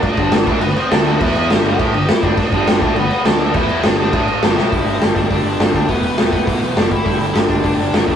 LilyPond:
<<
  \new Staff \with { instrumentName = "Lead electric guitar" } { \time 4/4 \key g \major \tempo 4 = 205 <d' d''>4. <d' d''>8 <b b'>8 <c' c''>8 <d' d''>8 <e' e''>8~ | <e' e''>4. <g' g''>4. <e' e''>8 <d' d''>8~ | <d' d''>4. <d' d''>8 <b b'>4 <d' d''>4 | <e' e''>4 <d' d''>4. r8 <d' d''>8 <e' e''>8~ |
<e' e''>4 r8 <d' d''>2 <d' d''>8 | <b b'>8 <b b'>2~ <b b'>8 <d' d''>8 <e' e''>8~ | <e' e''>4 r8 <d' d''>2 <d' d''>8 | }
  \new Staff \with { instrumentName = "Distorted electric guitar" } { \clef bass \time 4/4 \key g \major r8 <g, d g>4 <a, e a>8 <g, d>8 r8 <d a d'>4 | <e b e'>4 <g, d g>4 <a, e a>8 <g, d>8 r8 <g, d g>8 | r8 <g, d g>4 <a, e a>8 <g, d>8 r8 <d a d'>4 | <e b e'>4 <g, d g>4 <a, e a>4 <g, d g>8 <b, fis b>8 |
<g, d g>4 <g, d g>4 <g, d g>4 <g, d g>4 | <e, b, e>4 <e, b, e>4 <e, b, e>4 <e, b, e>8 r8 | <g, d g>4 <g, d g>4 <g, d g>4 <g, d g>4 | }
  \new Staff \with { instrumentName = "Picked electric bass" } { \clef bass \time 4/4 \key g \major r8 g,,4 a,,8 g,,8 r8 d,4 | e,4 g,,4 a,,8 g,,8 r8 g,,8 | r8 g,,4 a,,8 g,,8 r8 d,4 | e,4 g,,4 a,,4 g,,8 b,,8 |
g,,8 g,,8 g,,8 g,,8 g,,8 g,,8 g,,8 d,8 | e,,4 e,,4 b,,8 b,,8 fis,,8 g,,8 | g,,8 g,,8 g,,8 g,,8 g,,8 g,,8 g,,8 e,8 | }
  \new DrumStaff \with { instrumentName = "Drums" } \drummode { \time 4/4 <cymc bd>8 <cymc bd>8 <cymc sn>8 <cymc bd>8 cymc8 cymc8 <cymc sn>8 cymc8 | <cymc bd>8 cymc8 <cymc sn>8 cymc8 <cymc bd>8 cymc8 <cymc sn>8 <cymc bd>8 | <cymc bd>8 <cymc bd>8 <cymc sn>8 <cymc bd>8 cymc8 cymc8 <cymc sn>8 cymc8 | <cymc bd>8 cymc8 <cymc sn>8 cymc8 <cymc bd>8 cymc8 <cymc sn>8 sn8 |
<hho bd>8 hho8 <hho sn>8 <hho bd>8 <hho bd>8 hho8 <hho sn>8 <hho bd>8 | <hho bd>8 hho8 <hho sn>8 <hho bd>8 <hho bd>8 hho8 <hho sn>8 <hho bd>8 | <hho bd>8 hho8 <hho sn>8 <hho bd>8 <hho bd>8 hho8 <hho sn>8 <hho bd>8 | }
>>